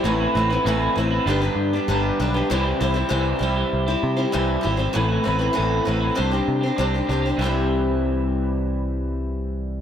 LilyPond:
<<
  \new Staff \with { instrumentName = "Steel-string acoustic guitar" } { \time 4/4 \key c \major \tempo 4 = 98 <a, e a e' b'>8 <a c' e' b'>16 <a c' e' b'>16 <a, e a e' b'>8 <a c' e' b'>8 <g d' g' b'>16 <d' g' b'>8 <d' g' b'>16 <g d' g' b'>8 <g d' g' b'>16 <d' g' b'>16 | <c e g c' e' c''>8 <g c' e' c''>16 <g c' e' c''>16 <c e g c' e' c''>8 <g c' e' c''>8. <g c' e' c''>8 <g c' e' c''>16 <c e g c' e' c''>8 <g c' e' c''>16 <g c' e' c''>16 | <a, e a a' b'>8 <a c' a' b'>16 <a c' a' b'>16 <a, e a a' b'>8 <a c' a' b'>8 <c' d' g' c''>16 <d' g' c''>8 <d' g' c''>16 <c' d' g' c''>16 <d' g' c''>16 <c' d' g' c''>16 <d' g' c''>16 | <c e g c' e' c''>1 | }
  \new Staff \with { instrumentName = "Clean electric guitar" } { \time 4/4 \key c \major <a, e b c' e'>16 <b c' e'>16 <e b c' e'>16 <b c' e'>16 <a, e b c' e'>8 <e b c' e'>16 <b c' e'>16 <g, d g b d' g'>16 <g b d' g'>8 <g b d' g'>16 <g, d g b d' g'>8 <g b d' g'>16 <g b d' g'>16 | <c e g e' g'>16 <g e' g'>16 <e g e' g'>16 <g e' g'>16 <c e g e' g'>8 <e g e' g'>16 <g e' g'>8 <g e' g'>8 <g e' g'>16 <c e g e' g'>8 <e g e' g'>16 <g e' g'>16 | <a, e b c' e'>16 <b c' e'>16 <e b c' e'>16 <b c' e'>16 <a, e b c' e'>8 <e b c' e'>16 <b c' e'>16 <c g c' d' g'>16 <c' d' g'>8 <c' d' g'>16 <c g c' d' g'>8 <g c' d' g'>16 <c' d' g'>16 | <c e g e' g'>1 | }
  \new Staff \with { instrumentName = "Picked electric bass" } { \clef bass \time 4/4 \key c \major a,,8 a,,8 a,,8 a,,8 g,,8 g,8 g,,8 b,,8 | c,8 c,8 c,8 c,8 c,8 c8 c,8 aes,,8 | a,,8 a,,8 a,,8 a,,8 c,8 c8 c,8 c,8 | c,1 | }
>>